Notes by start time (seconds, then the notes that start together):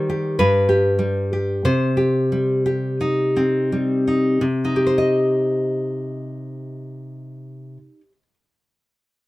Already playing: D#3 G3 C5
0.10 G4
0.39 G2 B4
0.69 G4
0.99 G3
1.33 G4
1.65 C3 C5
1.97 G4
2.32 G3
2.66 G4
3.01 D#4
3.36 C4
3.72 G3
4.07 D#4
4.41 C3
4.65 D#4
4.76 G4
4.87 C5
4.98 D#5